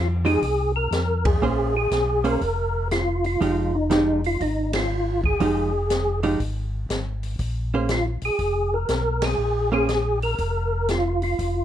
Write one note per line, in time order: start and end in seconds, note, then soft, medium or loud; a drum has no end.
0.00 0.38 F2 medium
0.25 0.40 F3 medium
0.25 0.40 G#3 medium
0.25 0.40 D#4 medium
0.25 0.41 G4 medium
0.25 0.72 G#4 loud
0.25 open hi-hat soft
0.42 0.88 C2 medium
0.42 kick soft
0.42 open hi-hat soft
0.76 1.27 A#4 medium
0.91 1.38 F2 medium
0.91 snare medium
0.91 closed hi-hat soft
1.25 1.75 G#4 medium
1.25 kick medium
1.25 ride medium
1.41 1.87 A#1 medium
1.41 1.72 A#3 medium
1.41 1.72 C#4 medium
1.41 1.72 G#4 medium
1.41 1.72 C5 medium
1.77 2.27 G#4 loud
1.91 2.38 B1 medium
1.91 snare medium
1.91 closed hi-hat medium
2.24 2.39 A#3 medium
2.24 2.40 C#4 medium
2.24 2.40 G#4 medium
2.24 2.88 A#4 medium
2.24 2.40 C5 medium
2.24 open hi-hat soft
2.41 3.37 F1 medium
2.41 kick soft
2.41 open hi-hat soft
2.91 3.25 F4 medium
2.91 snare medium
2.91 closed hi-hat soft
3.24 3.77 F4 medium
3.24 open hi-hat soft
3.41 4.37 F1 medium
3.41 3.71 F3 medium
3.41 3.71 G#3 medium
3.41 3.71 D#4 medium
3.41 3.71 G4 medium
3.41 kick soft
3.41 open hi-hat soft
3.75 4.21 D#4 loud
3.90 4.20 F3 medium
3.90 4.20 G#3 medium
3.90 4.21 D#4 medium
3.90 4.21 G4 medium
3.90 snare medium
3.90 closed hi-hat soft
4.24 4.42 F4 medium
4.24 open hi-hat soft
4.40 5.36 G#1 medium
4.40 4.72 D#4 medium
4.40 kick soft
4.40 open hi-hat soft
4.73 5.21 F4 medium
4.73 snare medium
4.73 ride medium
5.24 6.20 G#4 medium
5.24 kick soft
5.40 6.36 F1 medium
5.40 5.70 F3 medium
5.40 5.70 G#3 medium
5.40 5.70 D#4 medium
5.40 5.71 G4 medium
5.40 kick soft
5.40 open hi-hat soft
5.90 snare medium
5.90 closed hi-hat medium
6.23 6.38 F3 medium
6.23 6.38 G#3 medium
6.23 6.39 D#4 medium
6.23 6.39 G4 medium
6.23 open hi-hat soft
6.40 6.86 G#1 medium
6.40 kick soft
6.40 open hi-hat soft
6.89 7.36 G#1 medium
6.89 snare medium
6.89 closed hi-hat medium
7.23 open hi-hat soft
7.39 8.18 A#1 medium
7.39 kick soft
7.39 open hi-hat soft
7.74 7.88 A#3 medium
7.74 7.88 C#4 medium
7.74 7.89 G#4 medium
7.74 7.89 C5 medium
7.89 8.06 F4 medium
7.89 snare medium
7.89 closed hi-hat soft
8.22 8.31 A#1 soft
8.22 8.75 G#4 loud
8.22 open hi-hat soft
8.39 8.85 F1 medium
8.39 kick soft
8.39 open hi-hat soft
8.74 9.25 A#4 medium
8.89 9.36 B1 medium
8.89 snare medium
8.89 closed hi-hat soft
9.22 9.70 G#4 medium
9.22 snare medium
9.22 ride medium
9.38 10.35 A#1 medium
9.72 9.87 A#3 medium
9.72 9.88 C#4 medium
9.72 9.88 G#4 medium
9.72 10.19 G#4 loud
9.72 9.88 C5 medium
9.89 snare medium
9.89 closed hi-hat soft
10.22 10.91 A#4 medium
10.22 open hi-hat soft
10.38 11.34 F1 medium
10.38 kick soft
10.38 open hi-hat soft
10.89 11.22 F4 medium
10.89 snare medium
10.89 closed hi-hat medium
11.22 11.65 F4 medium
11.22 open hi-hat soft
11.39 11.65 F1 medium
11.39 kick soft
11.39 open hi-hat soft